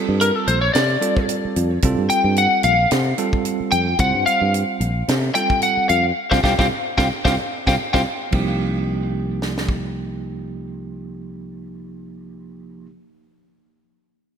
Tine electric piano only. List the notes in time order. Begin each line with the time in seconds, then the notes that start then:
Already playing: G3 C4 F4 A4
1.01 G3 C4 F4 A4
1.85 G3 C4 F4 A4
3.18 G3 C4 F4 A4
3.99 G3 C4 F4 C5
5.35 G3 C4 F4 A4
6.32 C4 F4 G4
6.44 C4 F4 G4
6.59 C4 F4 G4
6.97 C4 F4 G4
7.25 C4 F4 G4
7.66 C4 F4 G4
7.94 C4 F4 G4
8.31 F3 A#3 D#4
8.35 G4